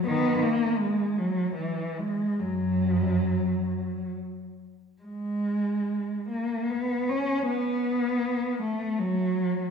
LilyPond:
\new Staff \with { instrumentName = "Cello" } { \clef bass \time 3/4 \key fis \mixolydian \tempo 4 = 73 << { b8 ais8 gis8 fis8 e8 gis8 | fis2 r4 | gis4. ais8 b8 cis'8 | b4. a8 fis4 | } \\ { dis8 r2 r8 | fis,4. r4. | r2. | r2. | } >> }